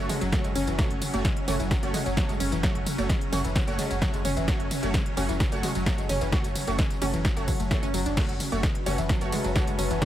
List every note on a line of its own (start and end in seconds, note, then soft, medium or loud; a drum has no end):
0.00 8.16 F#3 medium
0.00 0.13 A3 medium
0.00 8.16 C#4 medium
0.00 0.13 F#4 medium
0.00 0.13 C#5 loud
0.09 0.15 G#3 medium
0.09 open hi-hat loud
0.09 mid tom loud
0.09 ride medium
0.09 tambourine medium
0.21 0.32 F#1 medium
0.21 0.29 F#3 medium
0.21 closed hi-hat medium
0.21 tambourine soft
0.32 0.40 F#3 loud
0.32 0.48 A3 medium
0.32 0.48 F#4 medium
0.32 0.48 C#5 medium
0.32 kick loud
0.32 snare loud
0.32 closed hi-hat loud
0.32 mid tom loud
0.32 tambourine soft
0.44 0.55 F#1 medium
0.44 0.52 G#3 medium
0.44 closed hi-hat soft
0.44 tambourine soft
0.55 0.67 F#1 loud
0.55 0.61 C#4 loud
0.55 open hi-hat loud
0.55 mid tom medium
0.55 ride medium
0.55 tambourine medium
0.67 0.78 F#1 medium
0.67 0.72 E3 medium
0.67 closed hi-hat medium
0.67 tambourine soft
0.79 0.82 F#3 medium
0.79 0.94 A3 medium
0.79 0.94 F#4 medium
0.79 0.94 C#5 medium
0.79 kick loud
0.79 snare loud
0.79 closed hi-hat medium
0.79 mid tom loud
0.79 tambourine soft
0.90 1.01 F#1 medium
0.90 closed hi-hat medium
1.02 open hi-hat loud
1.02 mid tom medium
1.02 ride medium
1.02 tambourine medium
1.14 1.25 F#1 medium
1.14 1.23 A3 medium
1.14 1.23 F#4 medium
1.14 1.23 C#5 medium
1.14 closed hi-hat soft
1.14 tambourine soft
1.25 1.28 G#3 medium
1.25 kick loud
1.25 snare loud
1.25 closed hi-hat medium
1.25 mid tom loud
1.25 tambourine soft
1.37 closed hi-hat medium
1.48 1.59 F#1 loud
1.48 1.57 A3 medium
1.48 1.53 C#4 loud
1.48 1.57 F#4 medium
1.48 1.57 C#5 medium
1.48 open hi-hat loud
1.48 mid tom loud
1.48 ride medium
1.48 tambourine medium
1.60 1.71 F#1 medium
1.60 1.65 E3 medium
1.60 closed hi-hat medium
1.60 tambourine soft
1.71 1.79 F#3 medium
1.71 kick loud
1.71 snare loud
1.71 closed hi-hat medium
1.71 mid tom medium
1.71 tambourine soft
1.83 1.94 F#1 medium
1.83 1.97 A3 loud
1.83 1.97 F#4 medium
1.83 1.97 C#5 loud
1.83 closed hi-hat medium
1.83 tambourine soft
1.94 1.99 G#3 medium
1.94 open hi-hat loud
1.94 mid tom loud
1.94 ride medium
1.94 tambourine medium
2.06 2.17 F#1 medium
2.06 2.13 F#3 medium
2.06 closed hi-hat soft
2.06 tambourine soft
2.17 2.25 F#3 loud
2.17 2.32 A3 medium
2.17 2.32 F#4 medium
2.17 2.32 C#5 loud
2.17 kick loud
2.17 snare loud
2.17 closed hi-hat loud
2.17 mid tom loud
2.17 tambourine soft
2.29 2.40 F#1 medium
2.29 2.37 G#3 medium
2.29 closed hi-hat soft
2.29 tambourine soft
2.40 2.51 F#1 loud
2.40 2.46 C#4 loud
2.40 open hi-hat loud
2.40 mid tom medium
2.40 ride medium
2.40 tambourine medium
2.52 2.63 F#1 medium
2.52 2.57 E3 medium
2.52 closed hi-hat medium
2.52 tambourine soft
2.63 2.66 F#3 medium
2.63 2.78 A3 medium
2.63 2.78 F#4 medium
2.63 2.78 C#5 medium
2.63 kick loud
2.63 snare loud
2.63 closed hi-hat medium
2.63 mid tom medium
2.63 tambourine soft
2.75 2.86 F#1 medium
2.75 closed hi-hat medium
2.86 open hi-hat loud
2.86 mid tom medium
2.86 ride medium
2.86 tambourine medium
2.98 3.09 F#1 medium
2.98 3.07 A3 medium
2.98 3.07 F#4 medium
2.98 3.07 C#5 medium
2.98 closed hi-hat soft
2.98 tambourine soft
3.09 3.13 G#3 medium
3.09 kick loud
3.09 snare loud
3.09 closed hi-hat loud
3.09 mid tom medium
3.09 tambourine soft
3.21 closed hi-hat medium
3.32 3.44 F#1 loud
3.32 3.42 A3 medium
3.32 3.38 C#4 loud
3.32 3.42 F#4 medium
3.32 3.42 C#5 medium
3.32 open hi-hat loud
3.32 mid tom loud
3.32 ride medium
3.32 tambourine medium
3.44 3.55 F#1 medium
3.44 3.49 E3 medium
3.44 closed hi-hat medium
3.44 tambourine soft
3.56 3.64 F#3 medium
3.56 kick loud
3.56 snare loud
3.56 closed hi-hat medium
3.56 mid tom loud
3.56 tambourine soft
3.67 3.78 F#1 medium
3.67 3.82 A3 medium
3.67 3.82 F#4 medium
3.67 3.82 C#5 loud
3.67 closed hi-hat soft
3.67 tambourine soft
3.79 3.84 G#3 medium
3.79 open hi-hat loud
3.79 mid tom medium
3.79 ride medium
3.79 tambourine medium
3.90 4.02 F#1 medium
3.90 3.98 F#3 medium
3.90 closed hi-hat medium
3.90 tambourine soft
4.02 4.10 F#3 loud
4.02 4.17 A3 medium
4.02 4.17 F#4 medium
4.02 4.17 C#5 medium
4.02 kick loud
4.02 snare loud
4.02 closed hi-hat medium
4.02 mid tom loud
4.02 tambourine soft
4.14 4.24 F#1 medium
4.14 4.21 G#3 medium
4.14 closed hi-hat soft
4.14 tambourine soft
4.25 4.36 F#1 loud
4.25 4.30 C#4 loud
4.25 open hi-hat loud
4.25 mid tom loud
4.25 ride medium
4.25 tambourine medium
4.37 4.48 F#1 medium
4.37 4.42 E3 medium
4.37 closed hi-hat medium
4.37 tambourine soft
4.48 4.51 F#3 medium
4.48 4.63 A3 medium
4.48 4.63 F#4 medium
4.48 4.63 C#5 medium
4.48 kick loud
4.48 snare loud
4.48 closed hi-hat medium
4.48 mid tom medium
4.48 tambourine soft
4.60 4.71 F#1 medium
4.60 closed hi-hat medium
4.71 open hi-hat loud
4.71 mid tom medium
4.71 ride medium
4.71 tambourine medium
4.83 4.94 F#1 medium
4.83 4.92 A3 medium
4.83 4.92 F#4 medium
4.83 4.92 C#5 medium
4.83 closed hi-hat soft
4.83 tambourine soft
4.94 4.97 G#3 medium
4.94 kick loud
4.94 snare loud
4.94 closed hi-hat loud
4.94 mid tom medium
4.94 tambourine soft
5.06 closed hi-hat medium
5.17 5.28 F#1 loud
5.17 5.27 A3 medium
5.17 5.22 C#4 loud
5.17 5.27 F#4 medium
5.17 5.27 C#5 medium
5.17 open hi-hat loud
5.17 mid tom medium
5.17 ride medium
5.17 tambourine medium
5.29 5.40 F#1 medium
5.29 5.34 E3 medium
5.29 closed hi-hat medium
5.29 tambourine soft
5.40 5.48 F#3 medium
5.40 kick loud
5.40 snare loud
5.40 closed hi-hat medium
5.40 mid tom medium
5.40 tambourine soft
5.52 5.63 F#1 medium
5.52 5.67 A3 medium
5.52 5.67 F#4 medium
5.52 5.67 C#5 loud
5.52 closed hi-hat medium
5.52 tambourine soft
5.63 5.69 G#3 medium
5.63 open hi-hat loud
5.63 mid tom medium
5.63 ride medium
5.63 tambourine medium
5.75 5.86 F#1 medium
5.75 5.83 F#3 medium
5.75 closed hi-hat medium
5.75 tambourine soft
5.86 5.94 F#3 loud
5.86 6.01 A3 medium
5.86 6.01 F#4 medium
5.86 6.01 C#5 medium
5.86 kick loud
5.86 snare loud
5.86 closed hi-hat loud
5.86 mid tom medium
5.86 tambourine soft
5.98 6.09 F#1 medium
5.98 6.06 G#3 medium
5.98 closed hi-hat medium
5.98 tambourine soft
6.09 6.21 F#1 loud
6.09 6.15 C#4 loud
6.09 open hi-hat loud
6.09 mid tom loud
6.09 ride medium
6.09 tambourine medium
6.21 6.32 F#1 medium
6.21 6.26 E3 medium
6.21 closed hi-hat medium
6.21 tambourine soft
6.32 6.36 F#3 medium
6.32 6.48 A3 medium
6.32 6.48 F#4 medium
6.32 6.48 C#5 medium
6.32 kick loud
6.32 snare loud
6.32 closed hi-hat medium
6.32 mid tom medium
6.32 tambourine soft
6.44 6.55 F#1 medium
6.44 closed hi-hat medium
6.44 tambourine soft
6.55 open hi-hat loud
6.55 mid tom medium
6.55 ride medium
6.55 tambourine medium
6.67 6.78 F#1 medium
6.67 6.76 A3 medium
6.67 6.76 F#4 medium
6.67 6.76 C#5 medium
6.67 closed hi-hat medium
6.67 tambourine soft
6.79 6.82 G#3 medium
6.79 kick loud
6.79 snare loud
6.79 closed hi-hat loud
6.79 mid tom medium
6.79 tambourine soft
6.90 closed hi-hat medium
6.90 tambourine soft
7.02 7.13 F#1 loud
7.02 7.11 A3 medium
7.02 7.07 C#4 loud
7.02 7.11 F#4 medium
7.02 7.11 C#5 medium
7.02 open hi-hat loud
7.02 mid tom medium
7.02 ride medium
7.02 tambourine medium
7.14 7.25 F#1 medium
7.14 7.19 E3 medium
7.14 closed hi-hat medium
7.14 tambourine soft
7.25 7.33 F#3 medium
7.25 kick loud
7.25 snare loud
7.25 closed hi-hat loud
7.25 mid tom medium
7.25 tambourine soft
7.37 7.48 F#1 medium
7.37 7.51 A3 medium
7.37 7.51 F#4 medium
7.37 7.51 C#5 loud
7.37 closed hi-hat medium
7.37 tambourine soft
7.48 7.56 F#3 medium
7.48 kick medium
7.48 open hi-hat loud
7.48 mid tom medium
7.48 ride medium
7.48 tambourine medium
7.60 7.71 F#1 medium
7.60 7.63 A3 medium
7.60 closed hi-hat medium
7.60 tambourine soft
7.71 7.76 E3 loud
7.71 7.86 A3 medium
7.71 7.86 F#4 medium
7.71 7.86 C#5 medium
7.71 kick loud
7.71 snare loud
7.71 closed hi-hat loud
7.71 mid tom loud
7.71 tambourine soft
7.83 7.93 F#1 medium
7.83 7.90 C#4 loud
7.83 closed hi-hat medium
7.83 tambourine soft
7.94 8.05 F#1 loud
7.94 7.97 F#3 loud
7.94 open hi-hat loud
7.94 mid tom medium
7.94 ride medium
7.94 tambourine medium
8.06 8.17 F#1 medium
8.06 8.11 D4 medium
8.06 closed hi-hat medium
8.06 tambourine soft
8.17 10.05 F#3 medium
8.17 8.20 F#3 medium
8.17 8.32 A3 medium
8.17 10.05 C#4 medium
8.17 10.05 F#4 medium
8.17 8.32 F#4 medium
8.17 8.32 C#5 medium
8.17 kick loud
8.17 snare loud
8.17 closed hi-hat loud
8.17 mid tom medium
8.17 crash medium
8.17 tambourine soft
8.29 8.40 F#1 medium
8.29 closed hi-hat medium
8.40 10.05 B4 medium
8.40 open hi-hat loud
8.40 mid tom medium
8.40 ride medium
8.40 tambourine medium
8.52 8.63 F#1 medium
8.52 8.61 A3 medium
8.52 8.61 F#4 medium
8.52 8.61 C#5 loud
8.52 closed hi-hat medium
8.52 tambourine soft
8.60 8.66 G#3 medium
8.60 10.05 A5 medium
8.60 kick loud
8.60 snare loud
8.60 closed hi-hat loud
8.60 mid tom medium
8.60 tambourine soft
8.75 closed hi-hat medium
8.86 8.98 F#1 loud
8.86 8.96 A3 medium
8.86 8.92 C#4 loud
8.86 8.96 F#4 medium
8.86 8.96 C#5 medium
8.86 open hi-hat loud
8.86 mid tom medium
8.86 ride medium
8.86 tambourine medium
8.98 9.09 F#1 medium
8.98 9.03 E3 medium
8.98 closed hi-hat medium
8.98 tambourine soft
9.04 10.05 E5 medium
9.09 9.17 F#3 medium
9.09 kick loud
9.09 snare loud
9.09 closed hi-hat loud
9.09 mid tom medium
9.09 tambourine soft
9.21 9.32 F#1 medium
9.21 9.36 A3 medium
9.21 9.36 F#4 medium
9.21 9.36 C#5 loud
9.21 closed hi-hat medium
9.21 tambourine soft
9.32 9.38 G#3 medium
9.32 open hi-hat loud
9.32 mid tom medium
9.32 ride medium
9.32 tambourine medium
9.44 9.55 F#1 medium
9.44 9.52 F#3 medium
9.44 closed hi-hat medium
9.44 tambourine soft
9.56 9.71 A3 medium
9.56 9.71 F#4 medium
9.56 9.59 F#4 loud
9.56 9.71 C#5 loud
9.56 kick loud
9.56 snare loud
9.56 closed hi-hat loud
9.56 mid tom loud
9.56 tambourine soft
9.67 9.78 F#1 medium
9.67 9.75 G#3 medium
9.67 closed hi-hat medium
9.67 tambourine soft
9.79 9.90 F#1 loud
9.79 9.84 C#4 loud
9.79 open hi-hat loud
9.79 mid tom medium
9.79 ride medium
9.79 tambourine medium
9.90 10.01 F#1 medium
9.90 9.96 E3 medium
9.90 closed hi-hat medium
9.90 tambourine soft
10.02 10.05 F#3 medium
10.02 10.05 A3 medium
10.02 10.05 F#4 medium
10.02 10.05 C#5 medium
10.02 kick loud
10.02 snare loud
10.02 closed hi-hat medium
10.02 mid tom medium
10.02 tambourine soft